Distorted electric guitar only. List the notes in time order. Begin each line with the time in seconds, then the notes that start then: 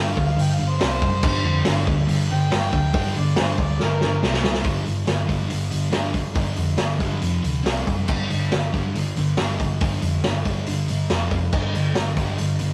Already playing: G2 D3 G3
0.16 G2 D3
0.37 G2 D3
0.59 G2 D3
0.79 C3 G3 C4
1.01 C3 G3
1.22 G2 D3 G3
1.45 G2 D3
1.66 G2 D3 G3
1.86 G2 D3
2.07 G2 D3
2.30 G2 D3
2.49 G2 D3 G3
2.72 G2 D3
2.93 G2 D3 G3
3.16 G2 D3
3.36 G2 D3 G3
3.59 G2 D3
3.81 G2 D3
4.03 G2 D3
4.22 C3 G3 C4
4.44 C3 G3
4.63 G2 D3 G3
4.86 G2 D3
5.05 G2 D3
5.26 G2 D3 G3
5.49 G2 D3
5.70 G2 D3
5.90 G2 D3 G3
6.14 G2 D3
6.34 G2 D3 G3
6.58 G2 D3
6.78 G2 D3
7.00 G2 D3 G3
7.21 F2 C3 F3
7.42 F2 C3
7.64 C3 G3 C4
7.85 C3 G3
8.06 G2 D3 G3
8.30 G2 D3
8.51 G2 D3
8.72 G2 D3 G3
8.94 G2 D3
9.17 G2 D3
9.38 G2 D3 G3
9.63 G2 D3
9.81 G2 D3 G3
10.01 G2 D3
10.25 G2 D3
10.44 G2 D3 G3
10.67 G2 D3
10.90 G2 D3
11.10 F2 C3 F3
11.34 F2 C3
11.53 G2 D3 G3
11.73 G2 D3
11.94 G2 D3
12.16 G2 D3 G3
12.38 G2 D3
12.59 G2 D3